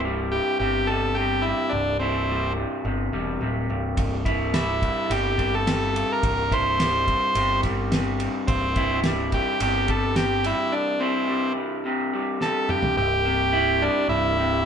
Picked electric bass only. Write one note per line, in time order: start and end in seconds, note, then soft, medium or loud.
0.00 0.39 C1 medium
0.60 1.52 G1 medium
1.73 2.64 C1 medium
2.85 3.08 G1 medium
3.13 3.39 E1 medium
3.41 3.67 D1 medium
3.70 3.95 C1 medium
3.98 4.89 C1 medium
5.10 6.02 G1 medium
6.23 7.14 C1 medium
7.35 8.27 G1 medium
8.48 9.39 C1 medium
9.61 10.52 G1 medium
12.97 13.88 C1 medium
14.09 14.65 C1 medium